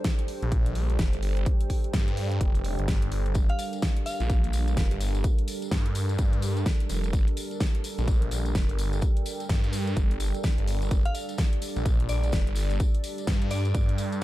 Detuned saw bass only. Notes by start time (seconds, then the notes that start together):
0.42 A#1
0.75 A#1
0.99 F1
1.13 G1
1.94 G2
2.41 F1
2.79 G1
3.12 G1
3.35 G1
4.20 A#1
4.53 A#1
4.77 F1
4.91 G1
5.71 G2
6.19 G2
6.90 F1
7.13 G1
7.98 A#1
8.31 A#1
8.55 F1
8.69 G1
9.49 G2
9.97 G1
10.58 G1
10.91 G1
11.76 A#1
12.09 A#1
12.33 F1
12.47 G1
13.27 G2
13.75 G2